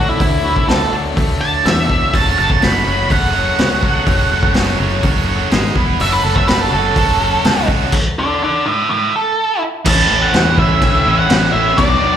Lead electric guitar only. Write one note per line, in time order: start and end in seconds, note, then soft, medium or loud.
0.09 0.67 E4 medium
0.69 0.92 A4 loud
1.41 1.65 A5 medium
1.66 2.13 E5 medium
2.15 2.37 A5 medium
2.39 2.62 A5 medium
2.64 3.10 B5 medium
3.12 4.52 F#5 medium
6.01 6.13 E5 medium
6.12 6.24 B4 medium
6.24 6.36 A4 medium
6.35 6.48 E5 medium
6.47 6.61 B4 loud
6.61 6.71 A4 medium
6.72 7.66 A4 medium
8.19 8.42 A4 medium
8.19 8.42 F#5 medium
8.43 8.65 A4 medium
8.43 8.66 F#5 medium
8.66 8.88 C#5 medium
8.66 8.89 E5 medium
8.90 9.12 C#5 medium
8.90 9.14 E5 medium
9.16 9.62 A4 loud
9.88 10.25 A5 loud
10.23 10.56 F#5 medium
10.59 11.18 E5 loud
11.19 11.52 F#5 medium
11.52 11.76 E5 medium
11.77 12.17 D5 medium